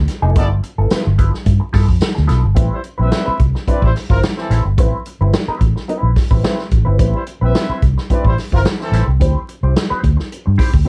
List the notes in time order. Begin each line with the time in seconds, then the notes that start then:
0.08 snare, closed hi-hat
0.22 F1 F3 B3 E4 A4
0.36 G1 F3 B3 E4 A4 D5, kick, closed hi-hat
0.50 muted clean electric guitar stroke
0.63 muted clean electric guitar stroke, closed hi-hat
0.78 G1 F3 B3 E4 A4
0.90 F3 B3 E4 B4, muted fingered electric bass stroke, snare, closed hi-hat, tambourine
1.05 G1, muted clean electric guitar stroke
1.18 F3 B3 E4 B4, kick, closed hi-hat
1.33 muted clean electric guitar stroke, snare
1.45 G2, muted clean electric guitar stroke, kick, closed hi-hat
1.60 muted clean electric guitar stroke
1.73 G2 F3 B3 E4 A4, kick, snare, open hi-hat
1.88 F2, muted clean electric guitar stroke, kick
2.01 muted clean electric guitar stroke, snare, closed hi-hat, tambourine
2.15 D2, muted clean electric guitar stroke, snare
2.27 B1 F3 B3 E4 A4, snare, closed hi-hat
2.43 G1, muted clean electric guitar stroke
2.55 A1 G3 C4 E4 B4, kick, closed hi-hat
2.72 G3 E4 C5
2.83 muted clean electric guitar stroke, closed hi-hat
2.98 A#1 G3 C4 E4 B4 E5
3.11 muted clean electric guitar stroke, snare, closed hi-hat
3.26 G3 C4 E4 B4, muted fingered electric bass stroke
3.40 C2, kick, closed hi-hat
3.55 muted clean electric guitar stroke, snare
3.67 G3 C4 D4 E4 B4 D5, kick, closed hi-hat
3.82 A1 G3 E4 C5, kick
3.96 muted clean electric guitar stroke, snare, open hi-hat
4.10 G1 G3 C4 E4 F4 A#4 C5, kick
4.23 snare, closed hi-hat
4.37 E3 C4 A4, muted clean electric guitar stroke, snare
4.50 A1 G3 C4 E4 B4, snare, closed hi-hat
4.65 G1, muted clean electric guitar stroke
4.78 A1 G3 C4 E4 B4, kick, closed hi-hat
5.06 muted clean electric guitar stroke, closed hi-hat
5.21 G1 G3 C4 E4 B4
5.33 muted clean electric guitar stroke, snare, closed hi-hat
5.48 G3 C4 E4 B4, muted fingered electric bass stroke
5.61 A1, muted clean electric guitar stroke, kick, closed hi-hat
5.76 muted clean electric guitar stroke, snare
5.88 G3 C4 E4 B4, closed hi-hat
6.03 A#1
6.16 muted clean electric guitar stroke, kick, snare, open hi-hat
6.31 A1 G3 C4 E4 B4, kick
6.43 G3 C4 E4 B4, snare, closed hi-hat
6.59 snare
6.71 A1, muted clean electric guitar stroke, kick, closed hi-hat
6.85 G1 G3 C4 E4 B4
6.98 A1 G3 C4 E4 B4, kick, closed hi-hat
7.14 G3 E4 C5
7.27 muted clean electric guitar stroke, closed hi-hat
7.41 A#1 G3 C4 E4 B4 E5
7.55 snare, closed hi-hat
7.69 G3 C4 E4 B4, muted fingered electric bass stroke
7.82 C2, muted clean electric guitar stroke, kick, closed hi-hat
7.98 muted clean electric guitar stroke, snare
8.10 G3 C4 D4 E4 B4 D5, kick, closed hi-hat
8.25 A1 G3 E4 C5, kick
8.37 muted clean electric guitar stroke, snare, open hi-hat
8.52 G1 G3 C4 E4 F4 A#4 C5, kick
8.65 snare, closed hi-hat
8.80 E3 C4 A4, muted clean electric guitar stroke, snare
8.92 A1 G3 C4 E4 B4, snare, closed hi-hat
9.07 C2, muted clean electric guitar stroke
9.20 D2 C4 E4 G4 C5, kick, closed hi-hat
9.48 muted clean electric guitar stroke, closed hi-hat
9.63 C2 C4 E4 G4 C5
9.76 snare, closed hi-hat
9.90 C4 E4 G4 C5, muted fingered electric bass stroke
10.03 D2, muted clean electric guitar stroke, kick, closed hi-hat
10.17 muted clean electric guitar stroke, snare
10.32 closed hi-hat
10.46 G2, muted clean electric guitar stroke
10.58 C4 E4 G4 C5, kick, snare, open hi-hat
10.72 D2, muted clean electric guitar stroke, kick
10.85 C4